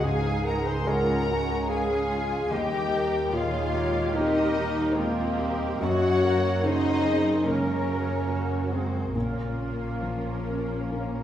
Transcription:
Already playing: grand piano C#2, double bass section C#2, harp C#3 G#3 C#5, cello section G#4
0.03 grand piano G#2, viola section G#3 D#4, violin section G#4 G#5, clarinet G#4, french horn section G#4, harp G#4, flute section F5
0.32 harp G#5
0.44 violin section A#4 A#5, french horn section A#4, clarinet A#4, flute section F#5
0.65 french horn section C5, violin section C5 C6, clarinet C5, flute section G#5
0.86 grand piano G#3 G#4 C#5, viola section G#3 C#4, harp C#4, cello section F4, french horn section A#4, violin section A#4 A#5, clarinet A#4, flute section F#5
1.29 viola section C#4, cello section F#4
1.42 harp C#5
1.68 harp F4, french horn section G#4, clarinet G#4, violin section G#4 G#5, cello section G#4, flute section F5
2.11 cello section F4
2.25 harp F4
2.50 double bass section D#2, grand piano D#2, harp D#3, viola section G3 A#3, violin section G4 G5, clarinet G4, french horn section G4, cello section G4, flute section D#5
2.79 harp D#4
2.93 cello section A#4
3.06 harp A#4
3.32 grand piano A#2, viola section D#3 A#3, french horn section F4, clarinet F4, violin section F4 F5, cello section G#4, flute section C#5, harp D#5
3.60 harp A#5
3.73 viola section G#3, cello section G4
3.87 harp D#5
4.14 viola section G3 C4, harp A#3, grand piano A#3 D#4 A#4, clarinet D#4, french horn section D#4, violin section D#4 D#5, flute section A#4
4.41 harp D#4
4.57 viola section A#3
4.95 viola section G#3 C4, clarinet A#3, violin section A#3 A#4, french horn section A#3, cello section F4, flute section G4, harp D#5
5.24 harp A#5
5.38 viola section G3, cello section G4
5.53 harp D#5
5.80 double bass section F#2, harp F#2, grand piano F#2, viola section A#3, violin section F#4 F#5, clarinet F#4, cello section F#4, french horn section F#4, flute section C#5
6.09 harp A#3
6.23 cello section A#4
6.36 harp A#4
6.63 grand piano C#3, viola section C#4, clarinet D#4, violin section D#4 D#5, french horn section D#4, cello section F#4, flute section C5
7.05 viola section C4, cello section G#4
7.18 harp A#4
7.44 harp C#3, viola section G#3 A#3, grand piano A#3 A#4, clarinet C#4, violin section C#4 C#5, french horn section C#4, cello section A#4, flute section A#4
7.74 harp A#3
7.87 viola section F#3
8.02 harp A#4
8.29 viola section F#3 A#3, cello section F#4
8.71 viola section G#3, clarinet C4, violin section C4 C5, french horn section C4, flute section G#4
8.87 harp A#4
9.15 double bass section A#1, grand piano A#2, harp A#2, clarinet A#3, viola section A#3 C#4, french horn section A#3, violin section A#3 A#4, cello section C#4, flute section F4
9.74 harp A#4
10.03 grand piano F3, harp C#4
10.32 harp C#5
10.61 harp A#4
10.91 harp F3, grand piano A#3 C#4 A#4
11.20 harp A#3

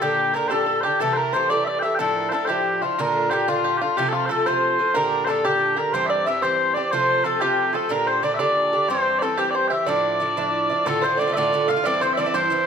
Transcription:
0.00 bouzouki A#2 D3 D4 G4, accordion G4, five-string banjo G4, bagpipes G4
0.33 bouzouki A#2 D3 D4 G4, accordion A#4, five-string banjo A#4, bagpipes A#4
0.48 bouzouki D3 D4 G4, accordion A4, five-string banjo A4, bagpipes A4 C5
0.52 bouzouki A#2
0.66 five-string banjo A4
0.81 five-string banjo G4, bagpipes G4 C5, accordion G4, bouzouki G4
0.86 bouzouki D3 D4
1.00 bouzouki C3 E3 A3 G4, five-string banjo A4, bagpipes A4, accordion A4
1.13 five-string banjo A#4, accordion A#4, bagpipes A#4 C5
1.33 bouzouki C3 E3 A3 G4, five-string banjo C5, bagpipes C5, accordion C5
1.50 bouzouki C3 E3 A3 G4, accordion D5, bagpipes D5, five-string banjo D5
1.64 accordion D5, five-string banjo D5, bagpipes D5 E5
1.79 five-string banjo E5, bagpipes E5 G5
1.83 bouzouki E3 A3 G4, accordion E5
1.95 bagpipes G5
1.99 bouzouki A2 F3 D4 E4, five-string banjo A4, bagpipes A4, accordion A4
2.16 accordion A#4
2.29 bouzouki A2, five-string banjo A4, bagpipes A4 C5, accordion A4
2.33 bouzouki F3 D4 E4
2.45 bouzouki E4, five-string banjo G4, accordion G4, bagpipes G4 C5
2.49 bouzouki A2 F3 D4
2.81 bouzouki F3 D4 E4, accordion F4, five-string banjo F4, bagpipes F4
2.98 bouzouki A#2 D3 D4 F4, five-string banjo A#4, accordion A#4, bagpipes A#4
3.15 accordion A4
3.30 bouzouki A#2 D3 D4 F4, accordion G4, five-string banjo G4, bagpipes G4 C5
3.48 bouzouki A#2 D3 D4 F4, five-string banjo F4, accordion F4, bagpipes F4
3.64 five-string banjo G4
3.77 accordion F4, bagpipes G4
3.81 bouzouki D3 D4 F4, bagpipes F4, five-string banjo F4
3.96 bouzouki C3 F3 A3 F4, accordion G4, five-string banjo G4, bagpipes G4
4.09 five-string banjo F4, accordion F4, bagpipes A4
4.13 bagpipes F4
4.26 bouzouki C3, accordion A4, five-string banjo A4, bagpipes C5
4.30 bouzouki F3 A3 F4, bagpipes A4
4.45 bouzouki C3 F3 A3 F4, accordion C5, five-string banjo C5, bagpipes C5
4.79 bouzouki F3 A3 F4
4.94 bouzouki A#2 D3 D4 G4, five-string banjo A#4, bagpipes A#4, accordion A#4
5.25 bouzouki A#2, five-string banjo A4, accordion A4, bagpipes C5
5.29 bouzouki D3 D4 G4, bagpipes A4
5.43 bouzouki A#2 D3 D4 G4, accordion G4, five-string banjo G4, bagpipes G4
5.75 bouzouki D4 G4, accordion A#4, five-string banjo A#4, bagpipes A#4
5.79 bouzouki D3
5.92 bouzouki G2 E3 C4 G4, accordion C5, bagpipes C5, five-string banjo C5
6.05 accordion D5 E5, bagpipes E5
6.10 bagpipes D5, five-string banjo D5
6.24 bouzouki G2 E3 C4, accordion E5, bagpipes E5, five-string banjo E5
6.28 bouzouki G4
6.42 bouzouki G2 E3 C4 G4, accordion C5, five-string banjo C5, bagpipes C5
6.74 bouzouki C4 G4, bagpipes D5, accordion D5, five-string banjo D5
6.79 bouzouki E3
6.90 bouzouki C3 F3 A3 F4, accordion C5, bagpipes C5, five-string banjo C5
7.24 bouzouki C3 F3 A3 F4, accordion A4, bagpipes A4, five-string banjo A4
7.39 bouzouki C3 F3 A3 F4, accordion G4, bagpipes G4, five-string banjo G4
7.73 bouzouki F3 A3 F4, accordion A4, bagpipes A4, five-string banjo A4
7.89 bouzouki A#2 D3 D4 G4, accordion A#4, bagpipes A#4, five-string banjo A#4
8.06 accordion C5, bagpipes C5, five-string banjo C5
8.23 bouzouki A#2 D3 D4 G4, five-string banjo D5, accordion D5, bagpipes D5
8.34 bagpipes E5
8.39 bouzouki A#2 D3 D4 G4, bagpipes D5, accordion D5, five-string banjo D5
8.73 bouzouki D3 D4 G4
8.89 bouzouki G2 E3 C4 G4, accordion C5, bagpipes C5, five-string banjo C5
9.19 bouzouki G2, bagpipes A4 D5, five-string banjo A4, accordion A4
9.23 bouzouki E3 C4 G4
9.37 bouzouki G2 E3 C4 G4, five-string banjo G4, accordion G4, bagpipes G4
9.50 accordion C5, bagpipes D5
9.55 five-string banjo C5, bagpipes C5
9.68 bouzouki C4 G4, accordion E5, five-string banjo E5, bagpipes G5
9.72 bouzouki E3, bagpipes E5
9.86 bouzouki A2 F3 D4 E4, accordion D5, five-string banjo D5, bagpipes D5
10.20 bouzouki A2 F3 D4 E4
10.37 bouzouki A2 F3 D4 E4
10.70 bouzouki F3 D4 E4
10.85 bouzouki A2 D3 A3 F4, accordion A4, five-string banjo A4, bagpipes A4
11.02 bouzouki A2 D3 A3 F4, accordion C5, five-string banjo C5, bagpipes C5
11.17 bouzouki A2 D3 A3, five-string banjo D5, bagpipes D5
11.22 bouzouki F4
11.27 bouzouki D3 A3 F4
11.33 five-string banjo D5, accordion D5, bagpipes D5 E5
11.37 bouzouki A2 D3 A3 F4
11.53 bouzouki A2 D3 A3 F4
11.67 bouzouki A2 D3 A3 F4, accordion F5, five-string banjo F5, bagpipes F5
11.76 bouzouki D3 A3 F4
11.84 bouzouki G2 E3 C4 E4, five-string banjo D5, accordion D5, bagpipes D5
12.01 bouzouki G2 E3 C4 E4, five-string banjo C5, bagpipes C5, accordion C5
12.13 five-string banjo D5, bagpipes E5
12.17 bouzouki G2 E3 C4 E4, bagpipes D5, accordion D5
12.26 bouzouki E3 C4 E4
12.34 bouzouki G2 E3 C4 E4, five-string banjo C5, bagpipes C5, accordion C5
12.50 bouzouki G2 E3 C4 E4

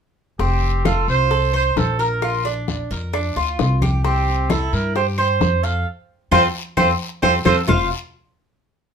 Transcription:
0.39 upright bass F1, cuban tres C4, trumpet G4, high bongo, high conga, long guiro
0.62 high conga
0.85 cuban tres F4, trumpet A4, high bongo, high conga, short guiro, claves
1.08 upright bass C2, trumpet C5, high conga, short guiro
1.31 cuban tres A4, high bongo, high conga, long guiro
1.54 cuban tres C5, trumpet C5, high conga, claves
1.76 upright bass A#1, trumpet A4, high bongo, low bongo, high conga, short guiro
1.99 cuban tres A#4, trumpet A#4, short guiro
2.22 cuban tres F4, high bongo, high conga, long guiro, claves
2.45 cuban tres D4, high bongo, high conga
2.68 high bongo, high conga, short guiro
2.91 upright bass F2, cuban tres A#4, high conga, short guiro
3.13 cuban tres D4, high bongo, high conga, long guiro, claves
3.36 upright bass D2, cuban tres F4, high bongo, high conga
3.59 upright bass C2, high bongo, low bongo, high conga, short guiro
3.82 cuban tres G4, high bongo, high conga, short guiro, claves
4.04 cuban tres C4, trumpet G4, high bongo, high conga, long guiro
4.27 high conga
4.50 cuban tres E4, trumpet A4, high bongo, high conga, short guiro, claves
4.73 upright bass G2, trumpet A#4, high conga, short guiro
4.95 cuban tres G4, trumpet C5, high bongo, high conga, long guiro
5.18 cuban tres C5, trumpet C5, high conga, claves
5.41 upright bass F2, high bongo, low bongo, high conga, short guiro
5.63 cuban tres A4, trumpet F5, short guiro
6.31 upright bass F2, cuban tres C4 F4 A4, trumpet C5, low bongo, high conga, long guiro, claves
6.77 upright bass F2, cuban tres C4 F4 A4, trumpet C5, low bongo, high conga, long guiro, claves
7.22 upright bass F2, cuban tres C4 F4 A4, trumpet C5, low bongo, high conga, long guiro, claves
7.45 upright bass F2, cuban tres C4 F4 A4, trumpet C5, low bongo, high conga, long guiro, claves
7.68 upright bass F1, cuban tres F4 C5 F5, low bongo, low conga, long guiro, claves

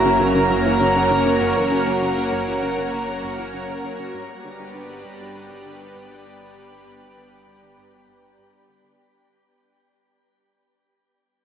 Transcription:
Already playing: analog synth bass F#1, analog synth pad F#3 A#3 C#4 E4 A#4, synth texture A#5
0.05 synth arpeggio sound C#3
0.20 synth arpeggio sound C#3
0.32 synth arpeggio sound C#3, analog synth pad F#4
0.50 synth arpeggio sound F#2
0.66 synth arpeggio sound E3
0.81 synth arpeggio sound C#3
0.96 synth arpeggio sound C#3
1.11 synth arpeggio sound C#3
1.26 synth arpeggio sound C#3
1.41 synth arpeggio sound F#2
1.57 synth arpeggio sound E3
1.72 synth arpeggio sound C#3
1.87 synth arpeggio sound C#3
2.02 synth arpeggio sound C#3
2.17 synth arpeggio sound C#3
2.32 synth arpeggio sound F#2
2.48 synth arpeggio sound E3
2.63 synth arpeggio sound C#3
2.78 synth arpeggio sound C#3
2.93 synth arpeggio sound C#3
3.08 synth arpeggio sound C#3
3.23 synth arpeggio sound F#2
3.38 synth arpeggio sound E3
3.54 synth arpeggio sound C#3
3.69 synth arpeggio sound C#3
3.84 synth arpeggio sound C#3
3.99 synth arpeggio sound C#3
4.14 analog synth bass G1, synth arpeggio sound G2, analog synth pad G3
4.26 synth arpeggio sound F#3, analog synth pad B3 G4
4.36 analog synth pad D4
4.44 synth arpeggio sound D3
4.49 analog synth pad B4
4.60 synth arpeggio sound D3
4.75 synth arpeggio sound D3
4.90 synth arpeggio sound D3
5.05 synth arpeggio sound G2
5.20 synth arpeggio sound F#3
5.35 synth arpeggio sound D3
5.51 synth arpeggio sound D3
5.66 synth arpeggio sound D3
5.81 synth arpeggio sound D3
5.96 synth arpeggio sound G2
6.11 synth arpeggio sound F#3
6.26 synth arpeggio sound D3
6.41 synth arpeggio sound D3
6.57 synth arpeggio sound D3
6.72 synth arpeggio sound D3
6.87 synth arpeggio sound G2
7.02 synth arpeggio sound F#3
7.17 synth arpeggio sound D3
7.32 synth arpeggio sound D3
7.47 synth arpeggio sound D3
7.63 synth arpeggio sound D3
7.78 synth arpeggio sound G2
7.93 synth arpeggio sound F#3
8.08 synth arpeggio sound G2
8.23 synth arpeggio sound G2
8.38 synth arpeggio sound G2
8.53 synth arpeggio sound G3
8.69 synth arpeggio sound D3
8.84 synth arpeggio sound D3

